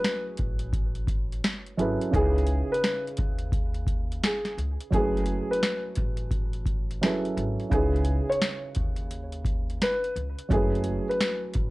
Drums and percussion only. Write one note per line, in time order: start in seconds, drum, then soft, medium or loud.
0.05 snare loud
0.05 closed hi-hat medium
0.37 kick medium
0.37 closed hi-hat medium
0.59 closed hi-hat soft
0.73 kick medium
0.73 closed hi-hat medium
0.95 closed hi-hat soft
1.07 kick medium
1.07 closed hi-hat medium
1.33 closed hi-hat soft
1.44 snare loud
1.44 closed hi-hat medium
1.67 closed hi-hat soft
1.79 closed hi-hat medium
2.01 closed hi-hat soft
2.13 kick loud
2.13 closed hi-hat medium
2.38 closed hi-hat soft
2.47 closed hi-hat medium
2.74 closed hi-hat soft
2.84 snare loud
2.84 closed hi-hat medium
3.07 closed hi-hat soft
3.17 kick medium
3.17 closed hi-hat medium
3.38 closed hi-hat soft
3.52 kick medium
3.52 closed hi-hat medium
3.74 closed hi-hat soft
3.87 kick medium
3.87 closed hi-hat medium
4.12 closed hi-hat soft
4.23 snare loud
4.23 closed hi-hat medium
4.45 snare soft
4.45 closed hi-hat soft
4.58 closed hi-hat medium
4.81 closed hi-hat soft
4.92 kick loud
4.92 closed hi-hat medium
5.17 closed hi-hat soft
5.26 closed hi-hat medium
5.53 closed hi-hat medium
5.63 snare loud
5.63 closed hi-hat medium
5.96 kick medium
5.96 closed hi-hat medium
6.17 closed hi-hat soft
6.31 kick medium
6.31 closed hi-hat medium
6.53 closed hi-hat soft
6.66 kick medium
6.66 closed hi-hat medium
6.91 closed hi-hat soft
7.03 snare loud
7.03 closed hi-hat medium
7.25 closed hi-hat soft
7.37 closed hi-hat medium
7.60 closed hi-hat soft
7.71 kick loud
7.71 closed hi-hat medium
7.96 closed hi-hat soft
8.05 closed hi-hat medium
8.32 closed hi-hat soft
8.42 snare loud
8.42 closed hi-hat medium
8.75 kick medium
8.75 closed hi-hat medium
8.96 closed hi-hat soft
9.11 closed hi-hat medium
9.32 closed hi-hat soft
9.45 kick medium
9.45 closed hi-hat medium
9.70 closed hi-hat soft
9.81 snare loud
9.81 closed hi-hat medium
10.04 closed hi-hat soft
10.16 closed hi-hat medium
10.39 closed hi-hat soft
10.50 kick loud
10.50 closed hi-hat medium
10.75 closed hi-hat soft
10.84 closed hi-hat medium
11.11 closed hi-hat medium
11.21 snare loud
11.21 closed hi-hat medium
11.54 kick medium
11.54 closed hi-hat medium